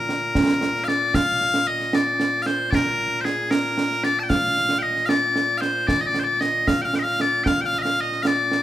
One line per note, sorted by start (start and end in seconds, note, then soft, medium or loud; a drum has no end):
0.00 8.63 A#2 medium
0.00 0.84 A#4 medium
0.09 snare medium
0.35 concert bass drum medium
0.35 snare loud
0.61 snare medium
0.75 snare soft
0.84 0.88 F5 medium
0.88 1.15 D5 medium
0.88 snare medium
1.14 1.67 F5 loud
1.14 concert bass drum medium
1.14 snare medium
1.41 snare soft
1.54 snare medium
1.67 1.94 D#5 medium
1.80 snare soft
1.93 2.42 D5 medium
1.93 snare loud
2.20 snare medium
2.42 2.47 F5 medium
2.46 2.71 C5 medium
2.46 snare medium
2.71 3.21 A#4 loud
2.71 2.75 D5 loud
2.71 concert bass drum medium
2.71 snare medium
3.21 3.51 G#4 medium
3.21 3.24 C5 medium
3.25 snare medium
3.51 4.04 A#4 medium
3.51 snare loud
3.78 snare medium
3.91 snare soft
4.04 4.19 D5 loud
4.04 snare medium
4.19 4.23 A5 medium
4.23 4.29 G5 medium
4.29 4.78 F5 loud
4.29 concert bass drum medium
4.29 snare medium
4.56 snare soft
4.69 snare medium
4.78 4.83 G5 medium
4.83 5.06 D#5 medium
4.96 snare soft
5.06 5.58 D5 loud
5.06 5.09 F5 loud
5.06 snare medium
5.36 snare medium
5.58 5.87 C5 medium
5.58 5.61 F5 medium
5.62 snare medium
5.87 6.01 D5 loud
5.87 concert bass drum medium
5.87 snare medium
6.01 6.06 D#5 medium
6.06 6.20 D5 loud
6.15 snare medium
6.20 6.24 C5 medium
6.24 6.40 D5 medium
6.40 6.68 D#5 medium
6.40 snare medium
6.68 6.82 F5 medium
6.68 concert bass drum medium
6.68 snare medium
6.82 6.95 F5 medium
6.82 6.85 G5 medium
6.94 6.99 G5 medium
6.94 snare medium
6.99 7.03 D#5 medium
7.03 7.21 F5 loud
7.03 snare soft
7.20 7.44 D5 loud
7.20 snare medium
7.44 7.61 F5 loud
7.44 7.47 G5 loud
7.44 concert bass drum medium
7.44 snare medium
7.61 7.66 G5 medium
7.66 7.79 F5 loud
7.72 snare soft
7.79 7.83 D#5 medium
7.79 8.01 F5 loud
7.85 snare medium
8.01 8.23 D#5 medium
8.12 snare soft
8.23 8.27 F5 medium
8.23 snare loud
8.27 8.63 D5 medium
8.52 snare medium